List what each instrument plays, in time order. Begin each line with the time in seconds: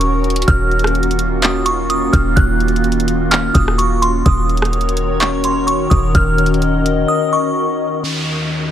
Already playing: 808-style bass D#1, ambient pad D#3 C#4 F#4 A#4 C#5, synth bell C#6
0.01 closed hi-hat
0.24 closed hi-hat
0.30 closed hi-hat
0.36 closed hi-hat
0.42 closed hi-hat
0.48 808-style bass D#1, ambient pad D#3 A#3 F4, synth bell F6, kick, closed hi-hat
0.71 closed hi-hat
0.79 closed hi-hat
0.84 cross-stick, closed hi-hat
0.95 closed hi-hat
1.03 closed hi-hat
1.11 closed hi-hat
1.19 closed hi-hat
1.42 synth bell D#6, clap, closed hi-hat
1.66 synth bell C#6, closed hi-hat
1.90 synth bell D#6, closed hi-hat
2.13 808-style bass D#1, synth bell F6, kick, closed hi-hat
2.36 808-style bass D#1, synth bell F#6, kick, closed hi-hat
2.60 closed hi-hat
2.68 closed hi-hat
2.76 closed hi-hat
2.84 closed hi-hat
2.92 closed hi-hat
3.00 closed hi-hat
3.08 closed hi-hat
3.31 synth bell F6, clap, closed hi-hat
3.54 808-style bass D#1, synth bell D#6, kick, closed hi-hat
3.68 cross-stick
3.78 synth bell C#6, closed hi-hat
4.02 synth bell C6, closed hi-hat
4.26 808-style bass D#1, ambient pad D#3 C#4 F#4 A#4 C#5, synth bell D#6, kick, closed hi-hat
4.49 closed hi-hat
4.57 closed hi-hat
4.62 cross-stick, closed hi-hat
4.73 closed hi-hat
4.81 closed hi-hat
4.89 closed hi-hat
4.97 closed hi-hat
5.20 synth bell C#6, clap, closed hi-hat
5.44 synth bell C6, closed hi-hat
5.67 synth bell C#6, closed hi-hat
5.90 808-style bass D#1, synth bell D#6, kick, closed hi-hat
6.15 808-style bass D#1, ambient pad D#5, synth bell F6, kick, closed hi-hat
6.38 closed hi-hat
6.46 closed hi-hat
6.54 closed hi-hat
6.62 closed hi-hat
6.86 closed hi-hat
7.08 synth bell D#6
7.33 synth bell C#6
8.04 ambient pad D#2 D#3 F4 F#4 C#5, synth bell F6, downlifter